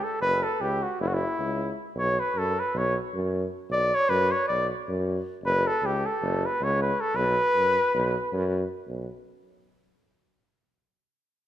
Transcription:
0.04 A4
0.20 F#1 B4
0.44 A4
0.61 C#2 G4
0.83 F#4
1.00 F#1 E4
1.08 F#4
1.14 E4
1.39 C#2
1.95 B1 C#5
2.20 B4
2.35 F#2 A4
2.60 B4
2.75 B1 C#5
3.14 F#2
3.69 B1 D5
3.95 C#5
4.09 F#2 B4
4.32 C#5
4.48 B1 D5
4.88 F#2
5.44 F#1 B4
5.67 A4
5.82 C#2 G4
6.06 A4
6.22 F#1
6.46 B4
6.61 C#2 C#5
6.82 B4
7.01 A4
7.16 B1 B4
7.55 F#2
7.94 B1
8.33 F#2
8.88 B1

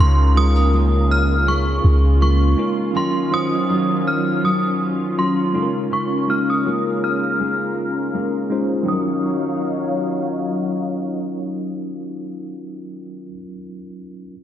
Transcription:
Already playing: G#3 C#4 D#4 F4 A#4, downlifter
0.00 C#2 C#3 C6
0.35 G#3 C#4 D#4 F4 A#4 D#6
0.56 A#3
0.73 G#3 A#3 F4
1.11 F6
1.47 G#3 C#6
1.84 C#2
2.21 G#3 A#3 F4 C#6
2.57 G#3 C#4 D#4 F4 A#4
2.94 D#3 F#3 C#4 D#4 F4 A#4 C6
3.31 F#3 C#4 D#4 F4 C5 D#6
3.69 F#3 C#4 F4
4.07 F6
4.43 F#3 D#6
5.17 F#3 C#4 F4 C6
5.53 C#3 G#3 C#4 D#4 F4 A4 A#4
5.62 A#4
5.91 C#3 C#6
6.27 G#3 A#3 C#4 D#4 F4 A#4 F6
6.50 D#6
6.65 G#3 A#3 F4
7.04 F6
7.39 G#3
8.13 G#3 A#3 F4
8.49 G#3 C#4 D#4 F4 C5
8.83 D#3 F#3 C#4
8.87 F#3 D#4 F4 C#5 F5 D#6
8.92 C#4 F4 A#4

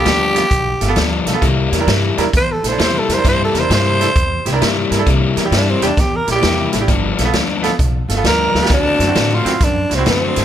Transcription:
Already playing: G4
0.05 D2 G2 F3 B3 D4, snare, closed hi-hat
0.35 B3 F4 G4, snare, closed hi-hat
0.51 B1, kick, closed hi-hat
0.80 G1 F4 A4, snare, closed hi-hat
0.88 B3 F4 A4
0.96 D2 G2 F3 B3 D4, snare, closed hi-hat
1.25 B1 F4 A4, snare, closed hi-hat
1.33 B3 F4 A4
1.42 C2 C3 G3 A#3 E4, kick, closed hi-hat
1.72 E2 E4 A#4, snare, closed hi-hat
1.80 D4 E4 A#4
1.87 G2 C3 G3 A#3 E4, snare, closed hi-hat
2.18 E2 D4 E4 A#4, snare, closed hi-hat
2.33 E2 C5, kick, snare, closed hi-hat
2.52 A4
2.63 A#1 E4 A4, snare, closed hi-hat
2.68 D4 E4 C5
2.72 A4
2.78 E2 C3 G3 A#3 E4, snare, closed hi-hat
2.83 C5
2.99 A4
3.09 F2 E4 A#4, snare, closed hi-hat
3.13 D4 C5
3.18 E4 A#4
3.24 G2 C3 G3 A#3 E4, kick, snare, closed hi-hat
3.29 C5
3.44 A4
3.54 E2 E4 A#4, snare, closed hi-hat
3.59 D4 E4 A#4 C5
3.70 G2 C3 G3 A#3 E4, snare, closed hi-hat
3.74 C5
4.00 D4 E4 A4, snare, closed hi-hat
4.16 E2, kick, closed hi-hat
4.46 C2 E4 G4, snare, closed hi-hat
4.53 D4 E4 A#4
4.61 G2 C3 G3 A#3 E4 E5, snare, closed hi-hat
4.91 G2 E4 A#4, snare, closed hi-hat
4.99 D4 E4 A4
5.06 C2 C3 G3 A#3 E4, kick, closed hi-hat
5.36 E2 E4 A#4, snare, closed hi-hat
5.44 D4 E4 G4
5.51 G2 C3 G3 A#3 E4, snare, closed hi-hat
5.56 D4
5.70 C4
5.82 E2 D4 E4 G4, snare, closed hi-hat
5.97 E2 G4, kick, snare, closed hi-hat
6.16 A#4
6.27 A#1 E4 A#4, snare, closed hi-hat
6.31 D4 G4
6.36 E4 G4
6.42 E2 C3 G3 A#3 E4, snare, closed hi-hat
6.73 A1 E4 A4, snare, closed hi-hat
6.80 D4 E4 G4
6.88 G1 G2 F3 B3 D4, kick, closed hi-hat
7.18 B1 F4 A4, snare, closed hi-hat
7.25 B3 F4 A4
7.33 D2 G2 F3 B3 D4, snare, closed hi-hat
7.63 B3 F4 A4, snare, closed hi-hat
7.79 B1, kick, closed hi-hat
8.08 G1 F4 A4, snare, closed hi-hat
8.17 B3 F4 A4
8.24 D2 G2 F3 B3 D4 A#4, snare, closed hi-hat
8.54 D2 F4 A4, snare
8.62 B3 F4 G4, snare
8.70 D2 D3 A3 C4 D4 F#4, kick, closed hi-hat
8.99 F#2 E4 F#4, snare, closed hi-hat
9.07 C4 E4 F#4
9.15 A2 D3 A3 C4 F#4, snare, closed hi-hat
9.34 F4
9.45 F#2 C4 E4 F#4, snare, closed hi-hat
9.61 F#2 D4, kick, snare, closed hi-hat
9.90 C2 E4 F#4, snare, closed hi-hat
9.95 C4 E4 F#4
10.06 F#2 D3 A3 C4 F#4, snare, closed hi-hat
10.10 C4
10.35 G2 E4 A4, snare, closed hi-hat

